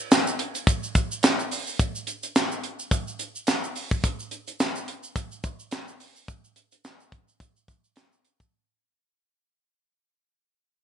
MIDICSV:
0, 0, Header, 1, 2, 480
1, 0, Start_track
1, 0, Tempo, 560748
1, 1535, Time_signature, 4, 2, 24, 8
1, 9270, End_track
2, 0, Start_track
2, 0, Title_t, "Drums"
2, 97, Note_on_c, 9, 82, 76
2, 101, Note_on_c, 9, 38, 116
2, 101, Note_on_c, 9, 42, 98
2, 108, Note_on_c, 9, 39, 85
2, 182, Note_off_c, 9, 82, 0
2, 186, Note_off_c, 9, 38, 0
2, 187, Note_off_c, 9, 42, 0
2, 193, Note_off_c, 9, 39, 0
2, 232, Note_on_c, 9, 82, 56
2, 317, Note_off_c, 9, 82, 0
2, 335, Note_on_c, 9, 42, 75
2, 421, Note_off_c, 9, 42, 0
2, 471, Note_on_c, 9, 82, 53
2, 472, Note_on_c, 9, 42, 48
2, 556, Note_off_c, 9, 82, 0
2, 557, Note_off_c, 9, 42, 0
2, 574, Note_on_c, 9, 36, 106
2, 575, Note_on_c, 9, 42, 94
2, 582, Note_on_c, 9, 82, 77
2, 659, Note_off_c, 9, 36, 0
2, 660, Note_off_c, 9, 42, 0
2, 668, Note_off_c, 9, 82, 0
2, 713, Note_on_c, 9, 82, 54
2, 799, Note_off_c, 9, 82, 0
2, 813, Note_on_c, 9, 42, 67
2, 815, Note_on_c, 9, 36, 88
2, 817, Note_on_c, 9, 82, 60
2, 899, Note_off_c, 9, 42, 0
2, 901, Note_off_c, 9, 36, 0
2, 902, Note_off_c, 9, 82, 0
2, 955, Note_on_c, 9, 82, 67
2, 1040, Note_off_c, 9, 82, 0
2, 1052, Note_on_c, 9, 42, 101
2, 1061, Note_on_c, 9, 82, 70
2, 1062, Note_on_c, 9, 38, 114
2, 1069, Note_on_c, 9, 39, 83
2, 1138, Note_off_c, 9, 42, 0
2, 1147, Note_off_c, 9, 38, 0
2, 1147, Note_off_c, 9, 82, 0
2, 1154, Note_off_c, 9, 39, 0
2, 1193, Note_on_c, 9, 82, 50
2, 1278, Note_off_c, 9, 82, 0
2, 1296, Note_on_c, 9, 46, 62
2, 1301, Note_on_c, 9, 82, 62
2, 1382, Note_off_c, 9, 46, 0
2, 1386, Note_off_c, 9, 82, 0
2, 1430, Note_on_c, 9, 82, 52
2, 1516, Note_off_c, 9, 82, 0
2, 1536, Note_on_c, 9, 36, 103
2, 1537, Note_on_c, 9, 42, 94
2, 1537, Note_on_c, 9, 82, 76
2, 1622, Note_off_c, 9, 36, 0
2, 1622, Note_off_c, 9, 42, 0
2, 1622, Note_off_c, 9, 82, 0
2, 1672, Note_on_c, 9, 82, 62
2, 1758, Note_off_c, 9, 82, 0
2, 1772, Note_on_c, 9, 42, 65
2, 1779, Note_on_c, 9, 82, 55
2, 1857, Note_off_c, 9, 42, 0
2, 1865, Note_off_c, 9, 82, 0
2, 1909, Note_on_c, 9, 82, 54
2, 1912, Note_on_c, 9, 42, 53
2, 1995, Note_off_c, 9, 82, 0
2, 1997, Note_off_c, 9, 42, 0
2, 2019, Note_on_c, 9, 38, 113
2, 2019, Note_on_c, 9, 82, 71
2, 2020, Note_on_c, 9, 42, 87
2, 2027, Note_on_c, 9, 39, 90
2, 2104, Note_off_c, 9, 82, 0
2, 2105, Note_off_c, 9, 38, 0
2, 2106, Note_off_c, 9, 42, 0
2, 2112, Note_off_c, 9, 39, 0
2, 2154, Note_on_c, 9, 82, 56
2, 2240, Note_off_c, 9, 82, 0
2, 2255, Note_on_c, 9, 42, 69
2, 2341, Note_off_c, 9, 42, 0
2, 2391, Note_on_c, 9, 82, 53
2, 2477, Note_off_c, 9, 82, 0
2, 2494, Note_on_c, 9, 36, 104
2, 2494, Note_on_c, 9, 42, 99
2, 2500, Note_on_c, 9, 82, 80
2, 2579, Note_off_c, 9, 36, 0
2, 2580, Note_off_c, 9, 42, 0
2, 2585, Note_off_c, 9, 82, 0
2, 2633, Note_on_c, 9, 82, 52
2, 2719, Note_off_c, 9, 82, 0
2, 2734, Note_on_c, 9, 42, 68
2, 2734, Note_on_c, 9, 82, 58
2, 2819, Note_off_c, 9, 42, 0
2, 2820, Note_off_c, 9, 82, 0
2, 2872, Note_on_c, 9, 82, 60
2, 2958, Note_off_c, 9, 82, 0
2, 2970, Note_on_c, 9, 42, 85
2, 2975, Note_on_c, 9, 82, 82
2, 2979, Note_on_c, 9, 38, 97
2, 2987, Note_on_c, 9, 39, 85
2, 3056, Note_off_c, 9, 42, 0
2, 3061, Note_off_c, 9, 82, 0
2, 3065, Note_off_c, 9, 38, 0
2, 3072, Note_off_c, 9, 39, 0
2, 3113, Note_on_c, 9, 82, 53
2, 3198, Note_off_c, 9, 82, 0
2, 3215, Note_on_c, 9, 46, 63
2, 3217, Note_on_c, 9, 82, 61
2, 3301, Note_off_c, 9, 46, 0
2, 3303, Note_off_c, 9, 82, 0
2, 3350, Note_on_c, 9, 36, 86
2, 3351, Note_on_c, 9, 82, 52
2, 3435, Note_off_c, 9, 36, 0
2, 3437, Note_off_c, 9, 82, 0
2, 3456, Note_on_c, 9, 36, 119
2, 3457, Note_on_c, 9, 42, 93
2, 3457, Note_on_c, 9, 82, 78
2, 3542, Note_off_c, 9, 36, 0
2, 3542, Note_off_c, 9, 82, 0
2, 3543, Note_off_c, 9, 42, 0
2, 3591, Note_on_c, 9, 82, 58
2, 3676, Note_off_c, 9, 82, 0
2, 3692, Note_on_c, 9, 42, 58
2, 3696, Note_on_c, 9, 82, 50
2, 3777, Note_off_c, 9, 42, 0
2, 3782, Note_off_c, 9, 82, 0
2, 3829, Note_on_c, 9, 82, 45
2, 3832, Note_on_c, 9, 42, 51
2, 3914, Note_off_c, 9, 82, 0
2, 3917, Note_off_c, 9, 42, 0
2, 3936, Note_on_c, 9, 82, 78
2, 3940, Note_on_c, 9, 38, 125
2, 3941, Note_on_c, 9, 42, 90
2, 3947, Note_on_c, 9, 39, 93
2, 4022, Note_off_c, 9, 82, 0
2, 4026, Note_off_c, 9, 38, 0
2, 4026, Note_off_c, 9, 42, 0
2, 4033, Note_off_c, 9, 39, 0
2, 4071, Note_on_c, 9, 82, 56
2, 4156, Note_off_c, 9, 82, 0
2, 4177, Note_on_c, 9, 42, 71
2, 4263, Note_off_c, 9, 42, 0
2, 4308, Note_on_c, 9, 82, 52
2, 4393, Note_off_c, 9, 82, 0
2, 4414, Note_on_c, 9, 36, 109
2, 4415, Note_on_c, 9, 42, 101
2, 4418, Note_on_c, 9, 82, 77
2, 4500, Note_off_c, 9, 36, 0
2, 4501, Note_off_c, 9, 42, 0
2, 4504, Note_off_c, 9, 82, 0
2, 4550, Note_on_c, 9, 82, 53
2, 4636, Note_off_c, 9, 82, 0
2, 4652, Note_on_c, 9, 82, 61
2, 4655, Note_on_c, 9, 36, 97
2, 4655, Note_on_c, 9, 42, 64
2, 4737, Note_off_c, 9, 82, 0
2, 4740, Note_off_c, 9, 42, 0
2, 4741, Note_off_c, 9, 36, 0
2, 4789, Note_on_c, 9, 82, 59
2, 4874, Note_off_c, 9, 82, 0
2, 4891, Note_on_c, 9, 42, 101
2, 4893, Note_on_c, 9, 82, 74
2, 4900, Note_on_c, 9, 38, 110
2, 4908, Note_on_c, 9, 39, 80
2, 4976, Note_off_c, 9, 42, 0
2, 4979, Note_off_c, 9, 82, 0
2, 4986, Note_off_c, 9, 38, 0
2, 4993, Note_off_c, 9, 39, 0
2, 5032, Note_on_c, 9, 82, 54
2, 5118, Note_off_c, 9, 82, 0
2, 5137, Note_on_c, 9, 46, 63
2, 5140, Note_on_c, 9, 82, 57
2, 5223, Note_off_c, 9, 46, 0
2, 5225, Note_off_c, 9, 82, 0
2, 5272, Note_on_c, 9, 82, 52
2, 5358, Note_off_c, 9, 82, 0
2, 5378, Note_on_c, 9, 36, 113
2, 5379, Note_on_c, 9, 42, 88
2, 5381, Note_on_c, 9, 82, 77
2, 5464, Note_off_c, 9, 36, 0
2, 5464, Note_off_c, 9, 42, 0
2, 5466, Note_off_c, 9, 82, 0
2, 5516, Note_on_c, 9, 82, 55
2, 5602, Note_off_c, 9, 82, 0
2, 5616, Note_on_c, 9, 42, 63
2, 5620, Note_on_c, 9, 82, 54
2, 5701, Note_off_c, 9, 42, 0
2, 5705, Note_off_c, 9, 82, 0
2, 5749, Note_on_c, 9, 82, 51
2, 5755, Note_on_c, 9, 42, 56
2, 5835, Note_off_c, 9, 82, 0
2, 5841, Note_off_c, 9, 42, 0
2, 5860, Note_on_c, 9, 82, 79
2, 5862, Note_on_c, 9, 38, 107
2, 5863, Note_on_c, 9, 42, 90
2, 5870, Note_on_c, 9, 39, 99
2, 5946, Note_off_c, 9, 82, 0
2, 5948, Note_off_c, 9, 38, 0
2, 5949, Note_off_c, 9, 42, 0
2, 5955, Note_off_c, 9, 39, 0
2, 5994, Note_on_c, 9, 82, 57
2, 6080, Note_off_c, 9, 82, 0
2, 6096, Note_on_c, 9, 36, 80
2, 6099, Note_on_c, 9, 42, 70
2, 6182, Note_off_c, 9, 36, 0
2, 6184, Note_off_c, 9, 42, 0
2, 6233, Note_on_c, 9, 82, 49
2, 6319, Note_off_c, 9, 82, 0
2, 6335, Note_on_c, 9, 36, 104
2, 6337, Note_on_c, 9, 42, 94
2, 6342, Note_on_c, 9, 82, 72
2, 6421, Note_off_c, 9, 36, 0
2, 6423, Note_off_c, 9, 42, 0
2, 6428, Note_off_c, 9, 82, 0
2, 6474, Note_on_c, 9, 82, 52
2, 6559, Note_off_c, 9, 82, 0
2, 6575, Note_on_c, 9, 42, 62
2, 6576, Note_on_c, 9, 36, 88
2, 6580, Note_on_c, 9, 82, 58
2, 6661, Note_off_c, 9, 42, 0
2, 6662, Note_off_c, 9, 36, 0
2, 6665, Note_off_c, 9, 82, 0
2, 6713, Note_on_c, 9, 82, 65
2, 6799, Note_off_c, 9, 82, 0
2, 6812, Note_on_c, 9, 42, 92
2, 6819, Note_on_c, 9, 82, 75
2, 6821, Note_on_c, 9, 38, 112
2, 6829, Note_on_c, 9, 39, 80
2, 6897, Note_off_c, 9, 42, 0
2, 6905, Note_off_c, 9, 82, 0
2, 6907, Note_off_c, 9, 38, 0
2, 6914, Note_off_c, 9, 39, 0
2, 6954, Note_on_c, 9, 82, 54
2, 7040, Note_off_c, 9, 82, 0
2, 7058, Note_on_c, 9, 42, 65
2, 7062, Note_on_c, 9, 82, 56
2, 7144, Note_off_c, 9, 42, 0
2, 7148, Note_off_c, 9, 82, 0
2, 7191, Note_on_c, 9, 36, 81
2, 7193, Note_on_c, 9, 82, 54
2, 7277, Note_off_c, 9, 36, 0
2, 7279, Note_off_c, 9, 82, 0
2, 9270, End_track
0, 0, End_of_file